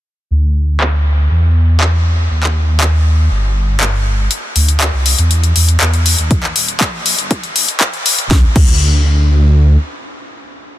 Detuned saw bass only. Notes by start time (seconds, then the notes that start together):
0.31 D2
1.31 E2
2.31 D#2
3.31 G1
4.56 D2
4.93 C2
5.18 E2
5.56 E2
5.81 E2
6.18 D#2
6.56 D#1
6.93 A#1
7.18 G1
7.56 G1
7.81 D1
8.18 D1
8.31 D2
8.56 D2